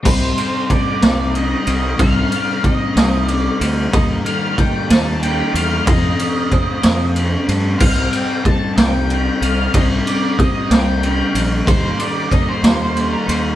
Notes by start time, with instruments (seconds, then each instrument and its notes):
0.03 fingered electric bass C2, clean electric guitar C3 G3 C4 D#4, lead electric guitar C5, kick, crash
0.36 clean electric guitar G3 C4 D#4, ride
0.69 clean electric guitar C3 G3 C4 D#4, lead electric guitar D5, kick, ride
1.02 fingered electric bass C2, clean electric guitar C3 G3 C4 D#4, snare, ride
1.35 lead electric guitar D#5, ride
1.65 fingered electric bass C2, clean electric guitar G3 C4 D#4, ride
1.97 fingered electric bass C2, clean electric guitar C3 G3 C4 D#4, lead electric guitar F5, kick, ride
2.30 clean electric guitar G3 C4 D#4, ride
2.62 clean electric guitar C3 G3 C4 D#4, lead electric guitar D#5, kick, ride
2.95 fingered electric bass C2, clean electric guitar C3 G3 C4 D#4, snare, ride
3.26 lead electric guitar D5, ride
3.60 fingered electric bass D2, clean electric guitar G3 C4 D#4, ride
3.91 fingered electric bass D#2, clean electric guitar D#3 G3 A#3 D#4, lead electric guitar D#5, kick, ride
4.24 clean electric guitar G3 A#3 D#4, lead electric guitar F5, ride
4.56 clean electric guitar D#3 G3 A#3 D#4, lead electric guitar G5, kick, ride
4.89 fingered electric bass D#2, clean electric guitar D#3 G3 A#3 D#4, lead electric guitar A5, snare, ride
5.23 lead electric guitar G5, ride
5.53 fingered electric bass E2, clean electric guitar G3 A#3 D#4, lead electric guitar F5, ride
5.85 clean electric guitar F2 C3 F3 A3 C4, fingered electric bass F2, lead electric guitar D#5, kick, ride
6.17 clean electric guitar A3 C4, ride
6.21 clean electric guitar F3
6.50 clean electric guitar C3 F3 A3 C4, kick, ride
6.82 fingered electric bass F2, clean electric guitar F2 C3 F3 A3 C4, snare, ride
7.16 ride
7.47 fingered electric bass G2, clean electric guitar A3 C4, ride
7.51 clean electric guitar F3
7.79 fingered electric bass C2, clean electric guitar C3 G3 C4 D#4, lead electric guitar F5, kick, crash
8.11 clean electric guitar G3 C4 D#4, lead electric guitar G5, ride
8.44 clean electric guitar C3 G3 C4 D#4, lead electric guitar A5, kick, ride
8.77 fingered electric bass C2, clean electric guitar C3 G3 C4 D#4, lead electric guitar G5, snare, ride
9.10 ride
9.41 fingered electric bass C2, clean electric guitar G3 C4 D#4, lead electric guitar F5, ride
9.74 fingered electric bass C2, clean electric guitar C3 G3 C4 D#4, lead electric guitar D#5, kick, ride
10.05 clean electric guitar G3 C4 D#4, lead electric guitar D5, ride
10.37 clean electric guitar C3 G3 C4 D#4, lead electric guitar D#5, kick, ride
10.70 fingered electric bass C2, clean electric guitar C3 G3 C4 D#4, lead electric guitar G5, snare, ride
11.03 ride
11.34 fingered electric bass A#1, clean electric guitar G3 C4 D#4, ride
11.66 fingered electric bass D#2, clean electric guitar D#3 G3 A#3 D#4, lead electric guitar C5, kick, ride
11.98 clean electric guitar G3 A#3 D#4, lead electric guitar D5, ride
12.30 clean electric guitar D#3 G3 A#3 D#4, lead electric guitar D#5, kick, ride
12.49 lead electric guitar C5
12.63 fingered electric bass D#2, clean electric guitar D#3 G3 A#3 D#4, snare, ride
12.97 ride
13.13 lead electric guitar A#4
13.27 fingered electric bass D#2, clean electric guitar G3 A#3 D#4, lead electric guitar C5, ride